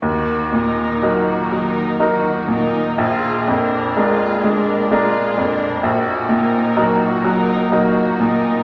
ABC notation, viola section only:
X:1
M:3/4
L:1/8
Q:1/4=62
K:Ebm
V:1 name="Viola section"
[B,G] [EB] [B,G] [EB] [B,G] [EB] | [FA] [=DB] [FA] [DB] [FA] [DB] | [B,G] [EB] [B,G] [EB] [B,G] [EB] |]